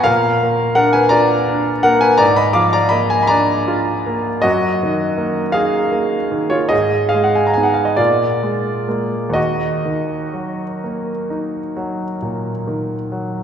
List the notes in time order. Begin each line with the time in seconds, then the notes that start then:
Already playing: F3 B3 F4 B4 C#5 F#5 G#5 A#5 B5 C#6
0.04 A#2 A#4 F5
0.43 A#3
0.75 D4 A#4 F#5
0.93 B4 G#5
1.09 F4 D5 A#5
1.48 D4
1.83 A#3 A#4 F#5
2.01 B4 G#5
2.18 G#2 D5 A#5
2.36 D#5 B5
2.53 F3 F5 D6
2.73 D5 A#5
2.89 A#3 D#5 B5
3.10 G#5
3.23 B5
3.27 D4 D5 A#5
3.68 F4
4.07 A#3
4.42 F#2 F#4 D#5
4.83 D#3
5.18 A#3
5.52 D#4 G#4 F5
5.92 A#3
6.32 D#3
6.50 F4 C#5
6.69 G#2 G#4 D#5
7.09 G#4 F5
7.14 G#3
7.24 F#5
7.35 G#5
7.47 A#5
7.54 B3 D#4 G#5
7.63 F#5
7.74 F5
7.85 D#5
7.97 A#2 F4 D5
8.43 G#3
8.88 G#3 A#3
9.30 D#2 D#5
9.35 F#4
9.85 D#3
10.33 F#3
10.84 A#3
11.30 D#4
11.77 F#3
12.22 A#2
12.67 D#3
13.12 F#3